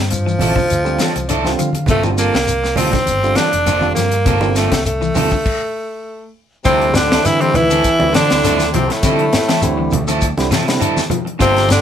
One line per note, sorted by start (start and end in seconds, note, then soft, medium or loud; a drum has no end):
0.00 0.35 G2 medium
0.00 0.22 D3 medium
0.10 1.55 F3 medium
0.10 muted clean electric guitar stroke soft
0.10 closed hi-hat medium
0.10 shekere medium
0.26 0.52 E3 medium
0.26 muted clean electric guitar stroke soft
0.26 shekere soft
0.38 0.54 A1 medium
0.38 0.59 D3 medium
0.38 0.56 F3 medium
0.38 0.58 G3 medium
0.38 0.59 C4 medium
0.38 0.55 C4 medium
0.38 0.55 E4 medium
0.38 0.59 F4 medium
0.38 0.55 A4 medium
0.38 open hi-hat medium
0.38 high conga medium
0.38 low conga medium
0.38 shekere medium
0.55 0.82 D3 medium
0.55 muted clean electric guitar stroke soft
0.55 kick medium
0.55 low conga medium
0.55 shekere soft
0.70 0.96 D2 medium
0.70 closed hi-hat medium
0.70 shekere medium
0.84 1.09 D3 medium
0.84 1.10 G3 medium
0.84 1.09 C4 medium
0.84 1.10 F4 medium
0.84 muted clean electric guitar stroke medium
0.84 shekere soft
0.99 1.25 E3 medium
0.99 1.16 F3 medium
0.99 1.15 C4 medium
0.99 1.15 A4 medium
0.99 snare medium
0.99 closed hi-hat medium
0.99 high conga medium
0.99 shekere medium
1.16 1.54 C2 medium
1.16 muted clean electric guitar stroke soft
1.16 closed hi-hat soft
1.16 shekere soft
1.28 1.55 D3 medium
1.28 1.48 C4 loud
1.28 1.48 E4 medium
1.28 1.48 A4 loud
1.28 1.57 D5 medium
1.28 closed hi-hat medium
1.28 shekere medium
1.44 1.69 D3 medium
1.44 1.69 G3 medium
1.44 1.69 C4 medium
1.44 1.69 F4 medium
1.44 snare soft
1.44 high conga medium
1.44 shekere soft
1.59 1.91 D3 medium
1.59 1.85 F3 medium
1.59 1.87 F5 medium
1.59 muted clean electric guitar stroke soft
1.59 closed hi-hat soft
1.59 shekere medium
1.73 muted clean electric guitar stroke soft
1.73 closed hi-hat soft
1.73 high conga medium
1.73 shekere soft
1.86 2.29 G1 medium
1.86 2.15 C3 medium
1.86 2.03 A3 medium
1.86 2.07 A#3 medium
1.86 2.07 C4 medium
1.86 2.08 F4 medium
1.86 2.08 A4 medium
1.86 kick medium
1.86 closed hi-hat medium
1.86 low conga medium
1.86 shekere medium
2.03 2.35 D3 medium
2.03 2.36 G3 medium
2.03 2.35 C4 medium
2.03 2.35 F4 medium
2.03 high conga medium
2.03 shekere soft
2.18 2.34 A#3 medium
2.18 2.74 A#3 loud
2.18 2.34 C4 medium
2.18 2.34 F4 medium
2.18 2.34 A4 medium
2.18 closed hi-hat soft
2.18 shekere medium
2.33 2.73 C2 medium
2.33 2.60 D3 medium
2.33 muted clean electric guitar stroke soft
2.33 snare medium
2.33 shekere soft
2.47 muted clean electric guitar stroke soft
2.47 closed hi-hat medium
2.47 shekere medium
2.63 muted clean electric guitar stroke soft
2.63 snare soft
2.63 shekere soft
2.76 2.92 D2 medium
2.76 2.97 D3 medium
2.76 2.97 G3 medium
2.76 2.93 A#3 medium
2.76 2.91 C4 medium
2.76 3.38 C4 loud
2.76 2.97 C4 medium
2.76 2.91 F4 medium
2.76 2.98 F4 medium
2.76 2.91 A4 medium
2.76 open hi-hat medium
2.76 high conga medium
2.76 low conga medium
2.76 shekere medium
2.92 3.20 D3 medium
2.92 muted clean electric guitar stroke soft
2.92 kick medium
2.92 snare soft
2.92 closed hi-hat soft
2.92 low conga medium
2.92 shekere soft
3.05 3.34 G1 medium
3.05 closed hi-hat medium
3.05 high conga medium
3.05 shekere medium
3.23 3.48 D3 medium
3.23 3.48 G3 medium
3.23 3.48 C4 medium
3.23 3.48 F4 medium
3.23 muted clean electric guitar stroke soft
3.23 shekere soft
3.35 3.63 E3 medium
3.35 3.53 A#3 medium
3.35 3.51 C4 medium
3.35 3.94 D4 loud
3.35 3.51 F4 medium
3.35 3.50 A4 medium
3.35 snare medium
3.35 closed hi-hat soft
3.35 high conga medium
3.35 shekere medium
3.52 3.92 F1 medium
3.52 muted clean electric guitar stroke soft
3.52 closed hi-hat soft
3.52 shekere soft
3.66 3.93 D3 medium
3.66 3.85 A#3 medium
3.66 3.86 C4 medium
3.66 3.86 F4 medium
3.66 3.86 A4 loud
3.66 closed hi-hat medium
3.66 shekere medium
3.81 4.07 D3 medium
3.81 4.07 G3 medium
3.81 4.07 C4 medium
3.81 4.07 F4 medium
3.81 high conga medium
3.81 shekere soft
3.94 4.28 G2 medium
3.94 4.23 F3 medium
3.94 4.58 A#3 medium
3.94 muted clean electric guitar stroke soft
3.94 snare soft
3.94 closed hi-hat medium
3.94 shekere medium
4.12 muted clean electric guitar stroke soft
4.12 closed hi-hat medium
4.12 shekere soft
4.25 4.67 G1 medium
4.25 4.52 C3 medium
4.25 4.45 A#3 medium
4.25 4.46 C4 medium
4.25 4.46 F4 medium
4.25 4.46 A4 medium
4.25 kick loud
4.25 closed hi-hat medium
4.25 low conga medium
4.25 shekere medium
4.41 4.73 D3 medium
4.41 4.73 G3 medium
4.41 4.73 C4 medium
4.41 4.73 F4 medium
4.41 high conga medium
4.41 shekere soft
4.56 4.85 A3 medium
4.56 4.72 A#3 medium
4.56 4.71 C4 medium
4.56 4.71 F4 medium
4.56 4.70 A4 medium
4.56 snare soft
4.56 closed hi-hat medium
4.56 shekere medium
4.72 5.11 C2 medium
4.72 4.98 D3 medium
4.72 muted clean electric guitar stroke soft
4.72 kick medium
4.72 snare medium
4.72 closed hi-hat medium
4.72 high conga medium
4.72 shekere soft
4.85 6.31 A3 medium
4.85 muted clean electric guitar stroke soft
4.85 closed hi-hat medium
4.85 shekere medium
5.01 5.28 E3 medium
5.01 muted clean electric guitar stroke soft
5.01 shekere soft
5.15 5.30 D2 medium
5.15 5.35 D3 medium
5.15 5.35 G3 medium
5.15 5.31 C4 medium
5.15 5.35 C4 medium
5.15 5.30 F4 medium
5.15 5.35 F4 medium
5.15 5.30 A4 medium
5.15 open hi-hat medium
5.15 high conga medium
5.15 low conga medium
5.15 shekere medium
5.31 5.58 D3 medium
5.31 muted clean electric guitar stroke soft
5.31 kick medium
5.31 shekere soft
5.46 kick medium
5.46 crash medium
6.64 7.18 D2 loud
6.64 6.95 C3 medium
6.64 6.97 C3 loud
6.64 6.91 C3 loud
6.64 6.90 D3 medium
6.64 6.83 F3 medium
6.64 6.90 G3 medium
6.64 6.97 C4 loud
6.64 6.84 C4 medium
6.64 6.90 C4 medium
6.64 6.84 E4 medium
6.64 6.90 E4 medium
6.64 6.84 A4 medium
6.64 kick medium
6.64 closed hi-hat medium
6.64 shekere medium
6.81 closed hi-hat soft
6.93 7.26 D3 medium
6.93 7.27 D3 medium
6.93 7.27 D4 loud
6.93 muted clean electric guitar stroke soft
6.93 snare medium
6.93 closed hi-hat medium
6.93 high conga medium
6.93 shekere medium
7.10 7.37 D3 medium
7.10 7.25 C4 soft
7.10 7.25 E4 medium
7.10 7.25 A4 medium
7.10 snare medium
7.10 high conga medium
7.10 shekere soft
7.24 7.55 D3 medium
7.24 7.51 D3 loud
7.24 7.42 E3 medium
7.24 7.43 E3 medium
7.24 7.55 G3 medium
7.24 7.56 C4 medium
7.24 7.56 E4 medium
7.24 7.42 E4 loud
7.24 muted clean electric guitar stroke soft
7.24 snare soft
7.24 closed hi-hat medium
7.24 shekere medium
7.40 7.54 C3 medium
7.40 7.55 C3 medium
7.40 7.67 E3 medium
7.40 7.58 C4 loud
7.40 muted clean electric guitar stroke soft
7.40 closed hi-hat soft
7.53 7.80 D2 loud
7.53 8.11 E3 medium
7.53 8.13 E3 loud
7.53 8.14 E4 loud
7.53 muted clean electric guitar stroke soft
7.53 closed hi-hat soft
7.53 high conga medium
7.53 low conga medium
7.53 shekere soft
7.70 7.96 D3 medium
7.70 7.87 C4 medium
7.70 7.87 E4 medium
7.70 7.87 A4 medium
7.70 closed hi-hat soft
7.70 shekere medium
7.84 kick medium
7.84 closed hi-hat medium
7.84 shekere medium
8.00 8.13 D2 loud
8.00 8.12 D3 medium
8.00 8.12 G3 medium
8.00 8.12 C4 medium
8.00 8.12 E4 medium
8.00 muted clean electric guitar stroke soft
8.00 high conga medium
8.12 8.68 D3 medium
8.12 8.69 D3 medium
8.12 8.28 D3 medium
8.12 8.40 E3 medium
8.12 8.29 F3 medium
8.12 8.29 C4 medium
8.12 8.70 D4 loud
8.12 8.29 A4 medium
8.12 muted clean electric guitar stroke medium
8.12 snare medium
8.12 closed hi-hat medium
8.12 shekere medium
8.30 8.43 D2 medium
8.30 8.61 D3 medium
8.30 8.61 G3 medium
8.30 8.61 C4 medium
8.30 8.61 E4 medium
8.30 muted clean electric guitar stroke soft
8.30 snare medium
8.30 closed hi-hat soft
8.30 shekere soft
8.44 8.71 D2 loud
8.44 8.70 D3 medium
8.44 8.62 F3 medium
8.44 8.63 C4 medium
8.44 8.63 E4 loud
8.44 8.63 A4 loud
8.44 snare soft
8.44 closed hi-hat medium
8.44 shekere medium
8.59 snare soft
8.59 closed hi-hat soft
8.59 high conga medium
8.59 shekere medium
8.72 8.88 C2 medium
8.72 8.90 C3 medium
8.72 8.92 C3 medium
8.72 9.00 F3 medium
8.72 8.93 C4 medium
8.72 muted clean electric guitar stroke soft
8.72 closed hi-hat medium
8.72 high conga medium
8.72 low conga medium
8.72 shekere soft
8.89 10.08 A2 medium
8.89 10.09 A2 medium
8.89 10.09 A3 medium
8.89 muted clean electric guitar stroke soft
8.89 snare soft
8.89 closed hi-hat soft
9.03 9.29 C3 medium
9.03 9.29 D3 medium
9.03 9.28 D3 medium
9.03 9.22 F3 medium
9.03 9.28 G3 medium
9.03 9.22 C4 medium
9.03 9.29 C4 medium
9.03 9.22 E4 medium
9.03 9.29 E4 medium
9.03 9.22 A4 medium
9.03 kick loud
9.03 closed hi-hat medium
9.03 shekere medium
9.19 closed hi-hat soft
9.33 muted clean electric guitar stroke soft
9.33 snare medium
9.33 closed hi-hat medium
9.33 high conga medium
9.33 shekere loud
9.48 9.74 E3 medium
9.48 9.60 C4 soft
9.48 9.61 E4 medium
9.48 9.61 A4 medium
9.48 snare medium
9.48 closed hi-hat soft
9.48 shekere soft
9.61 9.89 D2 medium
9.61 9.93 D3 loud
9.61 9.93 G3 medium
9.61 9.93 C4 medium
9.61 9.93 E4 medium
9.61 muted clean electric guitar stroke soft
9.61 closed hi-hat medium
9.61 shekere medium
9.78 10.04 E3 medium
9.78 muted clean electric guitar stroke medium
9.91 10.33 D2 loud
9.91 muted clean electric guitar stroke soft
9.91 closed hi-hat medium
9.91 high conga medium
9.91 low conga medium
9.91 shekere soft
10.08 10.34 D3 medium
10.08 10.25 F3 medium
10.08 10.25 C4 medium
10.08 10.25 E4 medium
10.08 10.25 A4 medium
10.08 closed hi-hat soft
10.08 shekere medium
10.21 kick medium
10.21 closed hi-hat medium
10.21 shekere medium
10.37 10.50 C2 medium
10.37 10.49 D3 loud
10.37 10.49 G3 medium
10.37 10.49 C4 medium
10.37 10.49 E4 medium
10.37 muted clean electric guitar stroke soft
10.37 snare soft
10.37 closed hi-hat soft
10.37 high conga medium
10.51 10.78 C3 loud
10.51 10.77 E3 medium
10.51 10.67 F3 medium
10.51 10.65 C4 medium
10.51 10.65 E4 medium
10.51 10.65 A4 medium
10.51 snare medium
10.51 closed hi-hat medium
10.51 shekere medium
10.66 10.98 D3 medium
10.66 10.98 G3 medium
10.66 10.98 C4 medium
10.66 10.98 E4 medium
10.66 muted clean electric guitar stroke medium
10.66 snare medium
10.66 closed hi-hat soft
10.66 shekere soft
10.80 11.07 D3 medium
10.80 10.99 C4 loud
10.80 11.00 E4 loud
10.80 10.99 A4 loud
10.80 muted clean electric guitar stroke loud
10.80 closed hi-hat medium
10.80 shekere medium
10.97 snare soft
10.97 high conga medium
10.97 shekere medium
11.10 11.36 F3 medium
11.10 muted clean electric guitar stroke soft
11.10 closed hi-hat medium
11.10 high conga medium
11.10 low conga medium
11.10 shekere soft
11.25 muted clean electric guitar stroke soft
11.25 closed hi-hat soft
11.39 11.81 G1 loud
11.39 11.66 C3 loud
11.39 11.68 C3 medium
11.39 11.69 C3 medium
11.39 11.65 D3 medium
11.39 11.65 G3 medium
11.39 11.58 A#3 medium
11.39 11.58 C4 medium
11.39 11.65 C4 medium
11.39 11.69 C4 loud
11.39 11.59 F4 medium
11.39 11.65 F4 medium
11.39 11.59 A4 medium
11.39 kick medium
11.39 closed hi-hat medium
11.39 shekere medium
11.56 snare soft
11.56 closed hi-hat soft
11.69 11.81 D3 medium
11.69 11.81 D4 loud
11.69 muted clean electric guitar stroke soft
11.69 snare medium
11.69 closed hi-hat medium
11.69 high conga medium
11.69 shekere loud